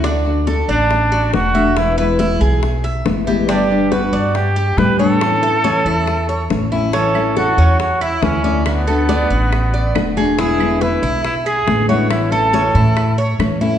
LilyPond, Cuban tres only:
\new Staff \with { instrumentName = "Cuban tres" } { \time 4/4 \key d \major \tempo 4 = 139 d'4 a'8 d'4 fis'4 e''8~ | e''8 b'8 e'8 gis'4 e''4 g'8 | d'4 b'8 d'4 g'4 cis''8~ | cis''8 a'8 cis'8 e'4 cis''4 e'8 |
cis'4 a'8 cis'4 e'4 d''8~ | d''8 a'8 d'8 fis'4 d''4 gis'8 | e'4 b'8 e'4 gis'4 cis''8~ | cis''8 a'8 cis'8 e'4 cis''4 e'8 | }